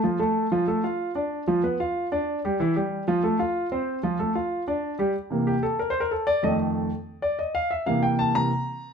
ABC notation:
X:1
M:4/4
L:1/8
Q:1/4=188
K:Cmix
V:1 name="Grand piano"
[F,F] [A,A]2 [F,F] [A,A] [Ff]2 [Dd]- | [Dd] [F,F] [=B,=B] [Ff]2 [Dd]2 [G,G] | [E,E] [G,G]2 [F,F] [A,A] [Ff]2 [Cc]- | [Cc] [F,F] [A,A] [Ff]2 [Dd]2 [G,G] |
z2 G A (3B c B A d | _e z4 d e f | e f g a b4 |]
V:2 name="Grand piano" clef=bass
z8 | z8 | z8 | z8 |
z [C,E,B,] z6 | [F,,_E,A,]3 z4 z | z [C,E,B,]3 [C,E,B,] z3 |]